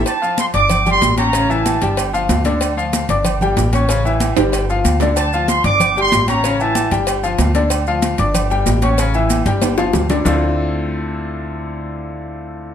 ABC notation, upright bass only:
X:1
M:4/4
L:1/8
Q:1/4=188
K:Dm
V:1 name="Upright bass" clef=bass
z3 G,,,3 A,,,2- | A,,,3 G,,,3 D,,2- | D,,3 G,,,3 A,,,2- | A,,,3 G,,,3 D,,2- |
D,,3 G,,,3 A,,,2- | A,,,3 G,,,3 D,,2- | D,,3 G,,,3 A,,,2- | A,,,3 G,,,3 D,,2 |
D,,8- | D,,8 |]